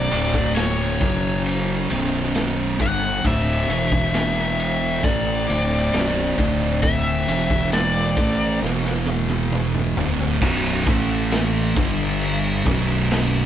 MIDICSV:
0, 0, Header, 1, 5, 480
1, 0, Start_track
1, 0, Tempo, 895522
1, 1742, Time_signature, 4, 2, 24, 8
1, 7213, End_track
2, 0, Start_track
2, 0, Title_t, "Lead electric guitar"
2, 0, Program_c, 0, 29
2, 0, Note_on_c, 0, 74, 97
2, 292, Note_off_c, 0, 74, 0
2, 294, Note_on_c, 0, 73, 65
2, 757, Note_off_c, 0, 73, 0
2, 1513, Note_on_c, 0, 78, 108
2, 1751, Note_off_c, 0, 78, 0
2, 1753, Note_on_c, 0, 76, 108
2, 2701, Note_on_c, 0, 74, 89
2, 2737, Note_off_c, 0, 76, 0
2, 3641, Note_off_c, 0, 74, 0
2, 3658, Note_on_c, 0, 76, 95
2, 4120, Note_off_c, 0, 76, 0
2, 4147, Note_on_c, 0, 74, 69
2, 4604, Note_off_c, 0, 74, 0
2, 7213, End_track
3, 0, Start_track
3, 0, Title_t, "Distorted electric guitar"
3, 0, Program_c, 1, 30
3, 0, Note_on_c, 1, 35, 91
3, 0, Note_on_c, 1, 42, 98
3, 0, Note_on_c, 1, 47, 95
3, 54, Note_off_c, 1, 35, 0
3, 58, Note_off_c, 1, 42, 0
3, 59, Note_on_c, 1, 38, 83
3, 60, Note_off_c, 1, 47, 0
3, 63, Note_on_c, 1, 45, 88
3, 68, Note_on_c, 1, 50, 85
3, 533, Note_off_c, 1, 38, 0
3, 536, Note_off_c, 1, 45, 0
3, 536, Note_on_c, 1, 42, 84
3, 538, Note_off_c, 1, 50, 0
3, 538, Note_on_c, 1, 49, 107
3, 541, Note_on_c, 1, 54, 102
3, 1012, Note_off_c, 1, 42, 0
3, 1013, Note_off_c, 1, 49, 0
3, 1014, Note_off_c, 1, 54, 0
3, 1017, Note_on_c, 1, 35, 84
3, 1019, Note_on_c, 1, 42, 94
3, 1021, Note_on_c, 1, 47, 100
3, 1492, Note_off_c, 1, 35, 0
3, 1493, Note_off_c, 1, 42, 0
3, 1494, Note_off_c, 1, 47, 0
3, 1494, Note_on_c, 1, 43, 80
3, 1498, Note_on_c, 1, 50, 97
3, 1500, Note_on_c, 1, 55, 100
3, 1725, Note_off_c, 1, 43, 0
3, 1726, Note_off_c, 1, 50, 0
3, 1727, Note_on_c, 1, 38, 93
3, 1730, Note_off_c, 1, 55, 0
3, 1732, Note_on_c, 1, 50, 107
3, 1734, Note_on_c, 1, 45, 96
3, 1965, Note_off_c, 1, 38, 0
3, 1967, Note_off_c, 1, 45, 0
3, 1967, Note_on_c, 1, 40, 82
3, 1969, Note_on_c, 1, 47, 101
3, 1970, Note_off_c, 1, 50, 0
3, 1973, Note_on_c, 1, 52, 89
3, 2685, Note_off_c, 1, 40, 0
3, 2687, Note_off_c, 1, 52, 0
3, 2688, Note_on_c, 1, 45, 82
3, 2689, Note_off_c, 1, 47, 0
3, 2693, Note_on_c, 1, 52, 98
3, 2698, Note_on_c, 1, 57, 97
3, 2928, Note_off_c, 1, 45, 0
3, 2931, Note_off_c, 1, 52, 0
3, 2933, Note_off_c, 1, 57, 0
3, 2935, Note_on_c, 1, 38, 89
3, 2941, Note_on_c, 1, 45, 102
3, 2943, Note_on_c, 1, 50, 100
3, 3172, Note_off_c, 1, 38, 0
3, 3175, Note_off_c, 1, 45, 0
3, 3176, Note_off_c, 1, 50, 0
3, 3182, Note_on_c, 1, 35, 85
3, 3186, Note_on_c, 1, 42, 93
3, 3187, Note_on_c, 1, 47, 110
3, 3415, Note_off_c, 1, 35, 0
3, 3417, Note_on_c, 1, 38, 90
3, 3418, Note_off_c, 1, 42, 0
3, 3418, Note_off_c, 1, 47, 0
3, 3423, Note_on_c, 1, 45, 92
3, 3425, Note_on_c, 1, 50, 113
3, 3894, Note_off_c, 1, 38, 0
3, 3896, Note_off_c, 1, 45, 0
3, 3897, Note_off_c, 1, 50, 0
3, 3902, Note_on_c, 1, 40, 86
3, 3907, Note_on_c, 1, 47, 90
3, 3910, Note_on_c, 1, 52, 100
3, 4373, Note_off_c, 1, 52, 0
3, 4376, Note_off_c, 1, 40, 0
3, 4378, Note_off_c, 1, 47, 0
3, 4378, Note_on_c, 1, 45, 98
3, 4380, Note_on_c, 1, 52, 104
3, 4385, Note_on_c, 1, 57, 95
3, 4613, Note_off_c, 1, 45, 0
3, 4615, Note_off_c, 1, 52, 0
3, 4615, Note_on_c, 1, 40, 95
3, 4617, Note_off_c, 1, 57, 0
3, 4619, Note_on_c, 1, 47, 89
3, 4623, Note_on_c, 1, 52, 88
3, 5333, Note_off_c, 1, 40, 0
3, 5334, Note_off_c, 1, 47, 0
3, 5337, Note_off_c, 1, 52, 0
3, 5342, Note_on_c, 1, 38, 91
3, 5343, Note_on_c, 1, 45, 88
3, 5346, Note_on_c, 1, 50, 98
3, 5576, Note_off_c, 1, 38, 0
3, 5576, Note_off_c, 1, 45, 0
3, 5578, Note_off_c, 1, 50, 0
3, 5578, Note_on_c, 1, 35, 107
3, 5579, Note_on_c, 1, 42, 109
3, 5583, Note_on_c, 1, 47, 109
3, 5812, Note_off_c, 1, 35, 0
3, 5814, Note_off_c, 1, 42, 0
3, 5814, Note_on_c, 1, 45, 90
3, 5817, Note_off_c, 1, 47, 0
3, 5820, Note_on_c, 1, 52, 102
3, 5825, Note_on_c, 1, 57, 97
3, 6292, Note_off_c, 1, 45, 0
3, 6295, Note_off_c, 1, 52, 0
3, 6297, Note_off_c, 1, 57, 0
3, 6297, Note_on_c, 1, 43, 99
3, 6302, Note_on_c, 1, 50, 118
3, 6306, Note_on_c, 1, 55, 117
3, 6772, Note_off_c, 1, 43, 0
3, 6775, Note_on_c, 1, 35, 98
3, 6776, Note_off_c, 1, 50, 0
3, 6778, Note_off_c, 1, 55, 0
3, 6780, Note_on_c, 1, 42, 106
3, 6783, Note_on_c, 1, 47, 109
3, 7213, Note_off_c, 1, 35, 0
3, 7213, Note_off_c, 1, 42, 0
3, 7213, Note_off_c, 1, 47, 0
3, 7213, End_track
4, 0, Start_track
4, 0, Title_t, "Fingered electric bass"
4, 0, Program_c, 2, 33
4, 59, Note_on_c, 2, 26, 93
4, 519, Note_off_c, 2, 26, 0
4, 540, Note_on_c, 2, 30, 94
4, 1000, Note_off_c, 2, 30, 0
4, 1020, Note_on_c, 2, 23, 89
4, 1480, Note_off_c, 2, 23, 0
4, 1498, Note_on_c, 2, 31, 95
4, 1723, Note_off_c, 2, 31, 0
4, 1738, Note_on_c, 2, 26, 103
4, 1963, Note_off_c, 2, 26, 0
4, 1976, Note_on_c, 2, 28, 92
4, 2678, Note_off_c, 2, 28, 0
4, 2702, Note_on_c, 2, 33, 90
4, 2926, Note_off_c, 2, 33, 0
4, 2942, Note_on_c, 2, 26, 87
4, 3166, Note_off_c, 2, 26, 0
4, 3184, Note_on_c, 2, 23, 98
4, 3407, Note_off_c, 2, 23, 0
4, 3420, Note_on_c, 2, 26, 92
4, 3881, Note_off_c, 2, 26, 0
4, 3902, Note_on_c, 2, 28, 97
4, 4362, Note_off_c, 2, 28, 0
4, 4380, Note_on_c, 2, 33, 93
4, 4605, Note_off_c, 2, 33, 0
4, 4622, Note_on_c, 2, 28, 84
4, 5322, Note_off_c, 2, 28, 0
4, 5346, Note_on_c, 2, 26, 94
4, 5568, Note_off_c, 2, 26, 0
4, 5585, Note_on_c, 2, 23, 105
4, 5808, Note_off_c, 2, 23, 0
4, 5823, Note_on_c, 2, 33, 97
4, 6282, Note_off_c, 2, 33, 0
4, 6305, Note_on_c, 2, 31, 108
4, 6763, Note_off_c, 2, 31, 0
4, 6785, Note_on_c, 2, 23, 96
4, 7213, Note_off_c, 2, 23, 0
4, 7213, End_track
5, 0, Start_track
5, 0, Title_t, "Drums"
5, 60, Note_on_c, 9, 51, 64
5, 114, Note_off_c, 9, 51, 0
5, 182, Note_on_c, 9, 36, 90
5, 236, Note_off_c, 9, 36, 0
5, 300, Note_on_c, 9, 51, 92
5, 306, Note_on_c, 9, 38, 104
5, 354, Note_off_c, 9, 51, 0
5, 360, Note_off_c, 9, 38, 0
5, 541, Note_on_c, 9, 36, 113
5, 542, Note_on_c, 9, 51, 65
5, 595, Note_off_c, 9, 36, 0
5, 595, Note_off_c, 9, 51, 0
5, 781, Note_on_c, 9, 51, 85
5, 834, Note_off_c, 9, 51, 0
5, 1019, Note_on_c, 9, 51, 70
5, 1072, Note_off_c, 9, 51, 0
5, 1259, Note_on_c, 9, 51, 76
5, 1264, Note_on_c, 9, 38, 106
5, 1312, Note_off_c, 9, 51, 0
5, 1318, Note_off_c, 9, 38, 0
5, 1499, Note_on_c, 9, 51, 64
5, 1500, Note_on_c, 9, 36, 77
5, 1552, Note_off_c, 9, 51, 0
5, 1553, Note_off_c, 9, 36, 0
5, 1739, Note_on_c, 9, 51, 86
5, 1740, Note_on_c, 9, 36, 100
5, 1792, Note_off_c, 9, 51, 0
5, 1793, Note_off_c, 9, 36, 0
5, 1981, Note_on_c, 9, 51, 66
5, 2035, Note_off_c, 9, 51, 0
5, 2100, Note_on_c, 9, 36, 90
5, 2154, Note_off_c, 9, 36, 0
5, 2219, Note_on_c, 9, 51, 90
5, 2225, Note_on_c, 9, 38, 105
5, 2272, Note_off_c, 9, 51, 0
5, 2278, Note_off_c, 9, 38, 0
5, 2348, Note_on_c, 9, 38, 27
5, 2402, Note_off_c, 9, 38, 0
5, 2463, Note_on_c, 9, 51, 73
5, 2517, Note_off_c, 9, 51, 0
5, 2702, Note_on_c, 9, 36, 107
5, 2703, Note_on_c, 9, 51, 93
5, 2755, Note_off_c, 9, 36, 0
5, 2757, Note_off_c, 9, 51, 0
5, 2944, Note_on_c, 9, 51, 76
5, 2998, Note_off_c, 9, 51, 0
5, 3181, Note_on_c, 9, 51, 95
5, 3187, Note_on_c, 9, 38, 100
5, 3234, Note_off_c, 9, 51, 0
5, 3240, Note_off_c, 9, 38, 0
5, 3419, Note_on_c, 9, 51, 70
5, 3421, Note_on_c, 9, 36, 84
5, 3473, Note_off_c, 9, 51, 0
5, 3474, Note_off_c, 9, 36, 0
5, 3658, Note_on_c, 9, 51, 96
5, 3660, Note_on_c, 9, 36, 118
5, 3711, Note_off_c, 9, 51, 0
5, 3714, Note_off_c, 9, 36, 0
5, 3902, Note_on_c, 9, 51, 74
5, 3956, Note_off_c, 9, 51, 0
5, 4021, Note_on_c, 9, 36, 92
5, 4075, Note_off_c, 9, 36, 0
5, 4139, Note_on_c, 9, 51, 93
5, 4145, Note_on_c, 9, 38, 107
5, 4192, Note_off_c, 9, 51, 0
5, 4198, Note_off_c, 9, 38, 0
5, 4266, Note_on_c, 9, 38, 30
5, 4320, Note_off_c, 9, 38, 0
5, 4377, Note_on_c, 9, 51, 68
5, 4380, Note_on_c, 9, 36, 103
5, 4430, Note_off_c, 9, 51, 0
5, 4433, Note_off_c, 9, 36, 0
5, 4623, Note_on_c, 9, 38, 57
5, 4676, Note_off_c, 9, 38, 0
5, 4743, Note_on_c, 9, 38, 60
5, 4797, Note_off_c, 9, 38, 0
5, 4859, Note_on_c, 9, 48, 75
5, 4912, Note_off_c, 9, 48, 0
5, 4982, Note_on_c, 9, 48, 65
5, 5036, Note_off_c, 9, 48, 0
5, 5103, Note_on_c, 9, 47, 77
5, 5157, Note_off_c, 9, 47, 0
5, 5223, Note_on_c, 9, 45, 75
5, 5276, Note_off_c, 9, 45, 0
5, 5345, Note_on_c, 9, 43, 89
5, 5399, Note_off_c, 9, 43, 0
5, 5465, Note_on_c, 9, 43, 74
5, 5519, Note_off_c, 9, 43, 0
5, 5582, Note_on_c, 9, 49, 123
5, 5582, Note_on_c, 9, 57, 87
5, 5584, Note_on_c, 9, 36, 115
5, 5636, Note_off_c, 9, 49, 0
5, 5636, Note_off_c, 9, 57, 0
5, 5638, Note_off_c, 9, 36, 0
5, 5825, Note_on_c, 9, 36, 120
5, 5825, Note_on_c, 9, 57, 71
5, 5878, Note_off_c, 9, 36, 0
5, 5879, Note_off_c, 9, 57, 0
5, 6064, Note_on_c, 9, 57, 87
5, 6070, Note_on_c, 9, 38, 115
5, 6118, Note_off_c, 9, 57, 0
5, 6124, Note_off_c, 9, 38, 0
5, 6306, Note_on_c, 9, 36, 111
5, 6307, Note_on_c, 9, 57, 67
5, 6360, Note_off_c, 9, 36, 0
5, 6361, Note_off_c, 9, 57, 0
5, 6546, Note_on_c, 9, 57, 94
5, 6600, Note_off_c, 9, 57, 0
5, 6786, Note_on_c, 9, 36, 118
5, 6786, Note_on_c, 9, 57, 72
5, 6840, Note_off_c, 9, 36, 0
5, 6840, Note_off_c, 9, 57, 0
5, 7026, Note_on_c, 9, 57, 98
5, 7032, Note_on_c, 9, 38, 104
5, 7080, Note_off_c, 9, 57, 0
5, 7086, Note_off_c, 9, 38, 0
5, 7213, End_track
0, 0, End_of_file